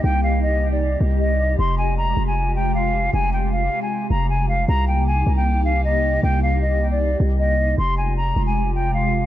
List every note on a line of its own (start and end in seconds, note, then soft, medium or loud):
0.00 0.97 C2 loud
0.00 1.55 C3 medium
0.00 1.56 A#3 medium
0.00 1.56 D#4 medium
0.00 4.64 G4 medium
0.04 0.21 G5 loud
0.23 0.40 F5 medium
0.43 0.70 D#5 medium
0.72 0.98 D5 medium
1.01 1.56 C2 loud
1.20 1.56 D#5 medium
1.59 2.14 F1 loud
1.59 7.74 C3 medium
1.59 4.65 G#3 medium
1.59 4.65 F4 medium
1.59 1.75 C6 loud
1.78 1.95 G#5 medium
1.98 2.25 A#5 medium
2.17 3.10 F1 loud
2.27 2.54 G#5 medium
2.56 2.72 G5 medium
2.75 3.11 F5 medium
3.14 3.69 F1 loud
3.14 3.30 G#5 loud
3.33 3.50 G5 medium
3.52 3.80 F5 medium
3.82 4.09 G#5 medium
4.10 4.66 F1 loud
4.10 4.27 A#5 medium
4.29 4.46 G#5 medium
4.49 4.66 F5 medium
4.68 5.24 C2 loud
4.68 7.75 A#3 medium
4.68 7.75 D#4 medium
4.68 7.75 G4 medium
4.68 4.85 A#5 loud
4.88 5.04 G5 medium
5.07 5.35 G#5 medium
5.27 6.19 C2 loud
5.37 5.63 G5 medium
5.65 5.82 F5 medium
5.84 6.21 D#5 medium
6.23 7.16 C2 loud
6.23 6.40 G5 loud
6.43 6.59 F5 medium
6.62 6.90 D#5 medium
6.91 7.18 D5 medium
7.20 7.76 C2 loud
7.39 7.76 D#5 medium
7.78 8.34 F1 loud
7.78 9.26 C3 medium
7.78 9.26 G#3 medium
7.78 9.26 F4 medium
7.78 9.26 G4 medium
7.78 7.95 C6 loud
7.98 8.14 G#5 medium
8.17 8.45 A#5 medium
8.36 9.26 F1 loud
8.46 8.73 G#5 medium
8.75 8.92 G5 medium
8.94 9.26 F5 medium